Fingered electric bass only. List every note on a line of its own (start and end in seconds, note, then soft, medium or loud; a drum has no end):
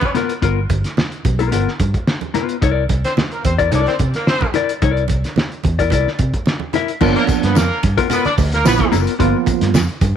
0.43 0.67 G1 medium
0.70 0.83 G1 medium
1.25 1.49 B1 medium
1.53 1.66 G1 medium
1.80 1.93 G2 medium
2.62 2.87 C2 medium
2.90 3.03 C2 medium
3.45 3.69 E2 medium
3.73 3.85 C2 medium
4.00 4.13 C3 medium
4.82 5.07 C2 medium
5.10 5.23 C2 medium
5.65 5.89 E2 medium
5.92 6.05 C2 medium
6.19 6.32 C3 medium
7.02 7.14 G1 medium
7.29 muted fingered electric bass stroke soft
7.44 7.55 G2 loud
7.56 7.69 F2 medium
7.84 7.96 G2 loud
8.25 muted fingered electric bass stroke medium
8.38 8.62 D2 medium
8.66 8.78 A#1 medium
8.93 9.06 F#1 loud
9.20 9.33 G1 medium
9.47 muted fingered electric bass stroke medium
9.62 9.76 G2 loud
9.74 9.87 F2 loud
10.02 10.14 G2 loud